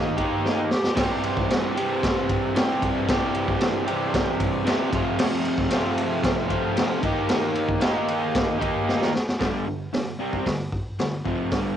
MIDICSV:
0, 0, Header, 1, 3, 480
1, 0, Start_track
1, 0, Tempo, 527704
1, 880, Time_signature, 4, 2, 24, 8
1, 10704, End_track
2, 0, Start_track
2, 0, Title_t, "Overdriven electric guitar"
2, 0, Program_c, 0, 29
2, 0, Note_on_c, 0, 51, 76
2, 0, Note_on_c, 0, 58, 93
2, 0, Note_on_c, 0, 63, 79
2, 0, Note_on_c, 0, 67, 94
2, 139, Note_off_c, 0, 51, 0
2, 148, Note_off_c, 0, 58, 0
2, 152, Note_off_c, 0, 67, 0
2, 155, Note_off_c, 0, 63, 0
2, 156, Note_on_c, 0, 67, 81
2, 168, Note_on_c, 0, 63, 85
2, 186, Note_on_c, 0, 58, 70
2, 197, Note_on_c, 0, 51, 70
2, 630, Note_off_c, 0, 63, 0
2, 639, Note_off_c, 0, 58, 0
2, 644, Note_off_c, 0, 51, 0
2, 871, Note_on_c, 0, 48, 92
2, 883, Note_on_c, 0, 52, 89
2, 897, Note_on_c, 0, 55, 99
2, 908, Note_on_c, 0, 60, 119
2, 912, Note_off_c, 0, 67, 0
2, 916, Note_on_c, 0, 67, 107
2, 1587, Note_off_c, 0, 67, 0
2, 1591, Note_on_c, 0, 67, 78
2, 1601, Note_off_c, 0, 60, 0
2, 1605, Note_on_c, 0, 60, 89
2, 1615, Note_off_c, 0, 55, 0
2, 1619, Note_on_c, 0, 55, 84
2, 1626, Note_off_c, 0, 52, 0
2, 1630, Note_on_c, 0, 52, 72
2, 1631, Note_off_c, 0, 48, 0
2, 1635, Note_on_c, 0, 48, 80
2, 2298, Note_off_c, 0, 67, 0
2, 2311, Note_off_c, 0, 48, 0
2, 2312, Note_off_c, 0, 55, 0
2, 2318, Note_off_c, 0, 52, 0
2, 2322, Note_on_c, 0, 48, 90
2, 2333, Note_on_c, 0, 52, 78
2, 2344, Note_on_c, 0, 55, 93
2, 2350, Note_off_c, 0, 60, 0
2, 2354, Note_on_c, 0, 60, 93
2, 2368, Note_on_c, 0, 67, 104
2, 2784, Note_off_c, 0, 48, 0
2, 2789, Note_off_c, 0, 52, 0
2, 2795, Note_off_c, 0, 55, 0
2, 2802, Note_on_c, 0, 48, 91
2, 2807, Note_off_c, 0, 67, 0
2, 2817, Note_on_c, 0, 52, 98
2, 2827, Note_on_c, 0, 55, 102
2, 2830, Note_off_c, 0, 60, 0
2, 2834, Note_on_c, 0, 60, 93
2, 2845, Note_on_c, 0, 67, 115
2, 3503, Note_off_c, 0, 48, 0
2, 3504, Note_off_c, 0, 67, 0
2, 3510, Note_off_c, 0, 52, 0
2, 3515, Note_off_c, 0, 55, 0
2, 3515, Note_on_c, 0, 67, 91
2, 3524, Note_off_c, 0, 60, 0
2, 3528, Note_on_c, 0, 60, 78
2, 3539, Note_on_c, 0, 55, 74
2, 3554, Note_on_c, 0, 52, 82
2, 3561, Note_on_c, 0, 48, 80
2, 4213, Note_off_c, 0, 48, 0
2, 4219, Note_off_c, 0, 67, 0
2, 4224, Note_off_c, 0, 52, 0
2, 4224, Note_on_c, 0, 48, 82
2, 4225, Note_off_c, 0, 60, 0
2, 4231, Note_off_c, 0, 55, 0
2, 4235, Note_on_c, 0, 52, 90
2, 4248, Note_on_c, 0, 55, 91
2, 4259, Note_on_c, 0, 60, 94
2, 4269, Note_on_c, 0, 67, 99
2, 4453, Note_on_c, 0, 41, 97
2, 4454, Note_off_c, 0, 48, 0
2, 4459, Note_off_c, 0, 52, 0
2, 4466, Note_off_c, 0, 55, 0
2, 4466, Note_on_c, 0, 48, 113
2, 4471, Note_off_c, 0, 60, 0
2, 4475, Note_on_c, 0, 53, 99
2, 4476, Note_off_c, 0, 67, 0
2, 4483, Note_on_c, 0, 57, 102
2, 4492, Note_on_c, 0, 60, 101
2, 4500, Note_on_c, 0, 65, 114
2, 5168, Note_off_c, 0, 41, 0
2, 5174, Note_off_c, 0, 48, 0
2, 5178, Note_off_c, 0, 53, 0
2, 5182, Note_off_c, 0, 57, 0
2, 5182, Note_on_c, 0, 41, 83
2, 5187, Note_off_c, 0, 60, 0
2, 5191, Note_off_c, 0, 65, 0
2, 5191, Note_on_c, 0, 48, 87
2, 5206, Note_on_c, 0, 53, 82
2, 5216, Note_on_c, 0, 57, 94
2, 5222, Note_on_c, 0, 60, 81
2, 5228, Note_on_c, 0, 65, 83
2, 5889, Note_off_c, 0, 65, 0
2, 5892, Note_off_c, 0, 41, 0
2, 5896, Note_off_c, 0, 48, 0
2, 5900, Note_on_c, 0, 65, 90
2, 5902, Note_off_c, 0, 60, 0
2, 5903, Note_off_c, 0, 53, 0
2, 5909, Note_off_c, 0, 57, 0
2, 5913, Note_on_c, 0, 60, 77
2, 5922, Note_on_c, 0, 57, 79
2, 5930, Note_on_c, 0, 53, 82
2, 5939, Note_on_c, 0, 48, 73
2, 5944, Note_on_c, 0, 41, 69
2, 6371, Note_off_c, 0, 65, 0
2, 6376, Note_off_c, 0, 53, 0
2, 6378, Note_off_c, 0, 60, 0
2, 6379, Note_on_c, 0, 51, 86
2, 6382, Note_off_c, 0, 57, 0
2, 6390, Note_off_c, 0, 48, 0
2, 6393, Note_off_c, 0, 41, 0
2, 6400, Note_on_c, 0, 58, 103
2, 6412, Note_on_c, 0, 63, 103
2, 6427, Note_on_c, 0, 67, 101
2, 7082, Note_off_c, 0, 51, 0
2, 7093, Note_on_c, 0, 51, 79
2, 7101, Note_off_c, 0, 58, 0
2, 7107, Note_off_c, 0, 63, 0
2, 7111, Note_on_c, 0, 58, 86
2, 7115, Note_off_c, 0, 67, 0
2, 7130, Note_on_c, 0, 63, 85
2, 7141, Note_on_c, 0, 67, 95
2, 7802, Note_off_c, 0, 67, 0
2, 7808, Note_off_c, 0, 51, 0
2, 7813, Note_on_c, 0, 67, 92
2, 7817, Note_off_c, 0, 58, 0
2, 7821, Note_off_c, 0, 63, 0
2, 7832, Note_on_c, 0, 63, 82
2, 7851, Note_on_c, 0, 58, 75
2, 7862, Note_on_c, 0, 51, 80
2, 8289, Note_off_c, 0, 67, 0
2, 8299, Note_off_c, 0, 63, 0
2, 8308, Note_off_c, 0, 58, 0
2, 8314, Note_off_c, 0, 51, 0
2, 8548, Note_on_c, 0, 43, 84
2, 8556, Note_on_c, 0, 50, 106
2, 8566, Note_on_c, 0, 55, 97
2, 8784, Note_off_c, 0, 43, 0
2, 8788, Note_off_c, 0, 50, 0
2, 8793, Note_off_c, 0, 55, 0
2, 8800, Note_on_c, 0, 43, 59
2, 8801, Note_on_c, 0, 50, 75
2, 8989, Note_off_c, 0, 43, 0
2, 8990, Note_off_c, 0, 50, 0
2, 9032, Note_on_c, 0, 43, 64
2, 9037, Note_on_c, 0, 50, 73
2, 9226, Note_off_c, 0, 43, 0
2, 9229, Note_off_c, 0, 50, 0
2, 9269, Note_on_c, 0, 48, 90
2, 9279, Note_on_c, 0, 55, 84
2, 9289, Note_on_c, 0, 60, 88
2, 9506, Note_off_c, 0, 48, 0
2, 9511, Note_off_c, 0, 55, 0
2, 9516, Note_off_c, 0, 60, 0
2, 9516, Note_on_c, 0, 43, 58
2, 9517, Note_on_c, 0, 50, 78
2, 9709, Note_off_c, 0, 43, 0
2, 9709, Note_off_c, 0, 50, 0
2, 9997, Note_on_c, 0, 43, 62
2, 10003, Note_on_c, 0, 50, 72
2, 10190, Note_off_c, 0, 43, 0
2, 10194, Note_off_c, 0, 50, 0
2, 10227, Note_on_c, 0, 41, 93
2, 10235, Note_on_c, 0, 48, 96
2, 10247, Note_on_c, 0, 53, 90
2, 10467, Note_off_c, 0, 41, 0
2, 10471, Note_off_c, 0, 48, 0
2, 10472, Note_on_c, 0, 43, 85
2, 10477, Note_off_c, 0, 53, 0
2, 10485, Note_on_c, 0, 50, 108
2, 10495, Note_on_c, 0, 55, 93
2, 10704, Note_off_c, 0, 43, 0
2, 10704, Note_off_c, 0, 50, 0
2, 10704, Note_off_c, 0, 55, 0
2, 10704, End_track
3, 0, Start_track
3, 0, Title_t, "Drums"
3, 161, Note_on_c, 9, 36, 79
3, 162, Note_on_c, 9, 51, 81
3, 252, Note_off_c, 9, 36, 0
3, 253, Note_off_c, 9, 51, 0
3, 413, Note_on_c, 9, 38, 73
3, 504, Note_off_c, 9, 38, 0
3, 646, Note_on_c, 9, 38, 85
3, 737, Note_off_c, 9, 38, 0
3, 763, Note_on_c, 9, 38, 91
3, 854, Note_off_c, 9, 38, 0
3, 882, Note_on_c, 9, 36, 123
3, 883, Note_on_c, 9, 49, 101
3, 891, Note_on_c, 9, 38, 120
3, 973, Note_off_c, 9, 36, 0
3, 974, Note_off_c, 9, 49, 0
3, 982, Note_off_c, 9, 38, 0
3, 1123, Note_on_c, 9, 51, 77
3, 1214, Note_off_c, 9, 51, 0
3, 1246, Note_on_c, 9, 36, 83
3, 1336, Note_off_c, 9, 36, 0
3, 1367, Note_on_c, 9, 51, 111
3, 1375, Note_on_c, 9, 38, 104
3, 1458, Note_off_c, 9, 51, 0
3, 1466, Note_off_c, 9, 38, 0
3, 1611, Note_on_c, 9, 51, 89
3, 1702, Note_off_c, 9, 51, 0
3, 1847, Note_on_c, 9, 36, 107
3, 1853, Note_on_c, 9, 51, 105
3, 1861, Note_on_c, 9, 38, 112
3, 1938, Note_off_c, 9, 36, 0
3, 1944, Note_off_c, 9, 51, 0
3, 1952, Note_off_c, 9, 38, 0
3, 2084, Note_on_c, 9, 51, 80
3, 2085, Note_on_c, 9, 36, 84
3, 2175, Note_off_c, 9, 51, 0
3, 2176, Note_off_c, 9, 36, 0
3, 2327, Note_on_c, 9, 51, 119
3, 2335, Note_on_c, 9, 38, 127
3, 2418, Note_off_c, 9, 51, 0
3, 2426, Note_off_c, 9, 38, 0
3, 2568, Note_on_c, 9, 36, 88
3, 2571, Note_on_c, 9, 51, 75
3, 2659, Note_off_c, 9, 36, 0
3, 2662, Note_off_c, 9, 51, 0
3, 2807, Note_on_c, 9, 36, 127
3, 2808, Note_on_c, 9, 51, 119
3, 2816, Note_on_c, 9, 38, 120
3, 2898, Note_off_c, 9, 36, 0
3, 2899, Note_off_c, 9, 51, 0
3, 2907, Note_off_c, 9, 38, 0
3, 3042, Note_on_c, 9, 51, 83
3, 3133, Note_off_c, 9, 51, 0
3, 3165, Note_on_c, 9, 36, 79
3, 3256, Note_off_c, 9, 36, 0
3, 3278, Note_on_c, 9, 51, 98
3, 3287, Note_on_c, 9, 38, 119
3, 3369, Note_off_c, 9, 51, 0
3, 3378, Note_off_c, 9, 38, 0
3, 3523, Note_on_c, 9, 51, 85
3, 3614, Note_off_c, 9, 51, 0
3, 3765, Note_on_c, 9, 36, 102
3, 3765, Note_on_c, 9, 51, 102
3, 3773, Note_on_c, 9, 38, 105
3, 3856, Note_off_c, 9, 36, 0
3, 3856, Note_off_c, 9, 51, 0
3, 3864, Note_off_c, 9, 38, 0
3, 4002, Note_on_c, 9, 51, 85
3, 4003, Note_on_c, 9, 36, 76
3, 4093, Note_off_c, 9, 51, 0
3, 4094, Note_off_c, 9, 36, 0
3, 4244, Note_on_c, 9, 51, 118
3, 4252, Note_on_c, 9, 38, 121
3, 4335, Note_off_c, 9, 51, 0
3, 4343, Note_off_c, 9, 38, 0
3, 4481, Note_on_c, 9, 36, 105
3, 4483, Note_on_c, 9, 51, 81
3, 4572, Note_off_c, 9, 36, 0
3, 4573, Note_off_c, 9, 51, 0
3, 4718, Note_on_c, 9, 49, 119
3, 4727, Note_on_c, 9, 38, 127
3, 4809, Note_off_c, 9, 49, 0
3, 4818, Note_off_c, 9, 38, 0
3, 4958, Note_on_c, 9, 51, 80
3, 5049, Note_off_c, 9, 51, 0
3, 5076, Note_on_c, 9, 36, 84
3, 5167, Note_off_c, 9, 36, 0
3, 5192, Note_on_c, 9, 51, 120
3, 5200, Note_on_c, 9, 38, 106
3, 5283, Note_off_c, 9, 51, 0
3, 5291, Note_off_c, 9, 38, 0
3, 5439, Note_on_c, 9, 51, 89
3, 5530, Note_off_c, 9, 51, 0
3, 5674, Note_on_c, 9, 36, 109
3, 5678, Note_on_c, 9, 51, 108
3, 5686, Note_on_c, 9, 38, 112
3, 5765, Note_off_c, 9, 36, 0
3, 5769, Note_off_c, 9, 51, 0
3, 5777, Note_off_c, 9, 38, 0
3, 5914, Note_on_c, 9, 36, 75
3, 5915, Note_on_c, 9, 51, 80
3, 6005, Note_off_c, 9, 36, 0
3, 6006, Note_off_c, 9, 51, 0
3, 6155, Note_on_c, 9, 51, 121
3, 6163, Note_on_c, 9, 38, 117
3, 6246, Note_off_c, 9, 51, 0
3, 6254, Note_off_c, 9, 38, 0
3, 6395, Note_on_c, 9, 36, 98
3, 6398, Note_on_c, 9, 51, 70
3, 6486, Note_off_c, 9, 36, 0
3, 6489, Note_off_c, 9, 51, 0
3, 6630, Note_on_c, 9, 51, 113
3, 6638, Note_on_c, 9, 38, 119
3, 6721, Note_off_c, 9, 51, 0
3, 6729, Note_off_c, 9, 38, 0
3, 6871, Note_on_c, 9, 51, 80
3, 6962, Note_off_c, 9, 51, 0
3, 6992, Note_on_c, 9, 36, 73
3, 7083, Note_off_c, 9, 36, 0
3, 7105, Note_on_c, 9, 51, 100
3, 7113, Note_on_c, 9, 38, 122
3, 7196, Note_off_c, 9, 51, 0
3, 7204, Note_off_c, 9, 38, 0
3, 7354, Note_on_c, 9, 51, 81
3, 7445, Note_off_c, 9, 51, 0
3, 7596, Note_on_c, 9, 36, 114
3, 7596, Note_on_c, 9, 51, 96
3, 7604, Note_on_c, 9, 38, 123
3, 7687, Note_off_c, 9, 36, 0
3, 7687, Note_off_c, 9, 51, 0
3, 7695, Note_off_c, 9, 38, 0
3, 7836, Note_on_c, 9, 36, 82
3, 7842, Note_on_c, 9, 51, 78
3, 7927, Note_off_c, 9, 36, 0
3, 7933, Note_off_c, 9, 51, 0
3, 8085, Note_on_c, 9, 38, 77
3, 8176, Note_off_c, 9, 38, 0
3, 8203, Note_on_c, 9, 38, 67
3, 8294, Note_off_c, 9, 38, 0
3, 8328, Note_on_c, 9, 38, 91
3, 8419, Note_off_c, 9, 38, 0
3, 8446, Note_on_c, 9, 38, 99
3, 8537, Note_off_c, 9, 38, 0
3, 8557, Note_on_c, 9, 36, 110
3, 8557, Note_on_c, 9, 46, 58
3, 8565, Note_on_c, 9, 38, 124
3, 8648, Note_off_c, 9, 36, 0
3, 8648, Note_off_c, 9, 46, 0
3, 8656, Note_off_c, 9, 38, 0
3, 9036, Note_on_c, 9, 46, 65
3, 9044, Note_on_c, 9, 38, 117
3, 9127, Note_off_c, 9, 46, 0
3, 9135, Note_off_c, 9, 38, 0
3, 9396, Note_on_c, 9, 36, 81
3, 9487, Note_off_c, 9, 36, 0
3, 9514, Note_on_c, 9, 46, 64
3, 9516, Note_on_c, 9, 36, 83
3, 9522, Note_on_c, 9, 38, 100
3, 9605, Note_off_c, 9, 46, 0
3, 9607, Note_off_c, 9, 36, 0
3, 9613, Note_off_c, 9, 38, 0
3, 9754, Note_on_c, 9, 36, 77
3, 9845, Note_off_c, 9, 36, 0
3, 9994, Note_on_c, 9, 46, 59
3, 10003, Note_on_c, 9, 38, 122
3, 10085, Note_off_c, 9, 46, 0
3, 10094, Note_off_c, 9, 38, 0
3, 10236, Note_on_c, 9, 36, 75
3, 10327, Note_off_c, 9, 36, 0
3, 10469, Note_on_c, 9, 46, 64
3, 10475, Note_on_c, 9, 36, 116
3, 10477, Note_on_c, 9, 38, 116
3, 10560, Note_off_c, 9, 46, 0
3, 10566, Note_off_c, 9, 36, 0
3, 10568, Note_off_c, 9, 38, 0
3, 10704, End_track
0, 0, End_of_file